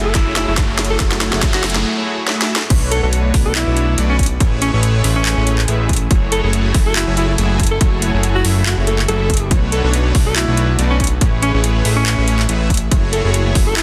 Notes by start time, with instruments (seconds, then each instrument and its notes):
Already playing: analog synth bass F#1, felt piano F#3 F#4 G#4 A4 E5, string section F#3 A3 E4 G#5, supersaw synth A3 E4 F#4 G#4 E5, riser
0.05 alto saxophone A4
0.15 alto saxophone E4, kick, snare, closed hi-hat
0.27 analog synth bass F#1, supersaw synth A3 E4 F#4 G#4 C#5
0.36 alto saxophone E4, snare, closed hi-hat
0.48 analog synth bass F#1, supersaw synth A3 E4 F#4 G#4 C#5, alto saxophone E4
0.57 kick, snare, closed hi-hat
0.69 analog synth bass F#1, supersaw synth A3 E4 F#4 G#4 C#5
0.79 snare, closed hi-hat
0.85 closed hi-hat
0.90 alto saxophone A4
0.99 analog synth bass F#1, felt piano F#3 F#4 G#4 A4 E5, supersaw synth A3 E4 F#4 G#4 C#5, alto saxophone A4, kick, snare, closed hi-hat
1.12 snare
1.21 snare, closed hi-hat
1.31 analog synth bass F#1, felt piano F#3 F#4 G#4 A4, supersaw synth A3 E4 F#4 G#4 C#5, snare
1.35 felt piano E5
1.43 kick, snare, closed hi-hat
1.54 alto saxophone F#4, snare
1.64 analog synth bass F#1, supersaw synth A3 E4 F#4 G#4 E5, snare, open hi-hat
1.70 closed hi-hat
1.76 snare
1.97 supersaw synth A3 E4 F#4 G#4 C#5
2.28 supersaw synth A3 E4 F#4 G#4 E5, snare
2.42 snare
2.56 snare
2.70 analog synth bass B1, string section A3 B3 D4, supersaw synth A3 D4 F#4 B4 C#5, kick, closed hi-hat, crash
2.91 alto saxophone A4, closed hi-hat
3.03 analog synth bass B1, supersaw synth A3 D4 F#4 B4 C#5, alto saxophone A4
3.13 closed hi-hat
3.34 analog synth bass B1, supersaw synth A3 D4 F#4 B4 D5, kick, open hi-hat
3.46 alto saxophone A4
3.55 alto saxophone E4, clap, closed hi-hat
3.67 analog synth bass B1, supersaw synth A3 D4 F#4 B4 C#5
3.77 closed hi-hat
3.98 analog synth bass B1, supersaw synth A3 D4 F#4 B4 D5, closed hi-hat
4.09 alto saxophone C#4
4.19 alto saxophone C#4, kick, closed hi-hat
4.23 closed hi-hat
4.26 closed hi-hat
4.40 analog synth bass A1, string section G#3 C#4, supersaw synth A3 E4 G#4 B4 C#5, kick, closed hi-hat
4.62 alto saxophone C#4, closed hi-hat
4.73 analog synth bass A1, supersaw synth A3 E4 G#4 B4 C#5, alto saxophone C#4
4.83 closed hi-hat
5.04 analog synth bass A1, supersaw synth A3 E4 G#4 B4 E5, open hi-hat
5.16 alto saxophone C#4
5.26 clap, closed hi-hat
5.37 analog synth bass A1, supersaw synth A3 E4 G#4 B4 C#5
5.47 closed hi-hat
5.58 clap
5.68 analog synth bass A1, supersaw synth A3 E4 G#4 B4 E5, closed hi-hat
5.89 kick, closed hi-hat
5.93 closed hi-hat
5.96 closed hi-hat
6.11 analog synth bass F#1, string section F#3 E4 A4 G#5, supersaw synth A3 E4 F#4 G#4 C#5, kick, closed hi-hat
6.32 alto saxophone A4, closed hi-hat
6.43 analog synth bass F#1, supersaw synth A3 E4 F#4 G#4 C#5, alto saxophone A4
6.53 closed hi-hat
6.74 analog synth bass F#1, supersaw synth A3 E4 F#4 G#4 E5, kick, open hi-hat
6.86 alto saxophone A4
6.96 alto saxophone E4, clap, closed hi-hat
7.07 analog synth bass F#1, supersaw synth A3 E4 F#4 G#4 C#5
7.17 alto saxophone E4, closed hi-hat
7.29 alto saxophone E4
7.38 analog synth bass F#1, supersaw synth A3 E4 F#4 G#4 E5, closed hi-hat
7.60 kick, closed hi-hat
7.63 closed hi-hat
7.67 closed hi-hat
7.71 alto saxophone A4
7.81 analog synth bass F#1, supersaw synth A3 E4 F#4 G#4 C#5, alto saxophone A4, kick, closed hi-hat
8.02 closed hi-hat
8.14 analog synth bass F#1, supersaw synth A3 E4 F#4 G#4 C#5
8.23 closed hi-hat
8.35 alto saxophone F#4
8.45 analog synth bass F#1, supersaw synth A3 E4 F#4 G#4 E5, open hi-hat
8.66 alto saxophone F#4, clap, closed hi-hat
8.78 analog synth bass F#1, supersaw synth A3 E4 F#4 G#4 C#5
8.87 alto saxophone A4, closed hi-hat
8.99 clap
9.08 analog synth bass F#1, supersaw synth A3 E4 F#4 G#4 E5, alto saxophone A4, closed hi-hat
9.30 kick, closed hi-hat
9.34 closed hi-hat
9.37 closed hi-hat
9.51 analog synth bass B1, supersaw synth A3 D4 F#4 B4 C#5, string section A3 B3 D4, kick, closed hi-hat
9.72 alto saxophone A4, closed hi-hat
9.84 analog synth bass B1, supersaw synth A3 D4 F#4 B4 C#5, alto saxophone A4
9.94 closed hi-hat
10.15 analog synth bass B1, supersaw synth A3 D4 F#4 B4 D5, kick, open hi-hat
10.26 alto saxophone A4
10.36 alto saxophone E4, clap, closed hi-hat
10.48 analog synth bass B1, supersaw synth A3 D4 F#4 B4 C#5
10.57 closed hi-hat
10.79 analog synth bass B1, supersaw synth A3 D4 F#4 B4 D5, closed hi-hat
10.90 alto saxophone C#4
11.00 alto saxophone C#4, kick, closed hi-hat
11.04 closed hi-hat
11.07 closed hi-hat
11.21 analog synth bass A1, string section G#3 C#4, supersaw synth A3 E4 G#4 B4 C#5, kick, closed hi-hat
11.42 alto saxophone C#4, closed hi-hat
11.54 analog synth bass A1, supersaw synth A3 E4 G#4 B4 C#5, alto saxophone C#4
11.64 closed hi-hat
11.85 analog synth bass A1, supersaw synth A3 E4 G#4 B4 E5, open hi-hat
11.97 alto saxophone C#4
12.06 clap, closed hi-hat
12.18 analog synth bass A1, supersaw synth A3 E4 G#4 B4 C#5
12.28 closed hi-hat
12.39 clap
12.49 analog synth bass A1, supersaw synth A3 E4 G#4 B4 E5, closed hi-hat
12.70 kick, closed hi-hat
12.74 closed hi-hat
12.77 closed hi-hat
12.91 analog synth bass F#1, string section F#3 E4 A4 G#5, supersaw synth A3 E4 F#4 G#4 C#5, kick, closed hi-hat
13.13 alto saxophone A4, closed hi-hat
13.24 analog synth bass F#1, supersaw synth A3 E4 F#4 G#4 C#5, alto saxophone A4
13.34 closed hi-hat
13.55 analog synth bass F#1, supersaw synth A3 E4 F#4 G#4 E5, kick, open hi-hat
13.67 alto saxophone A4
13.77 alto saxophone E4, clap, closed hi-hat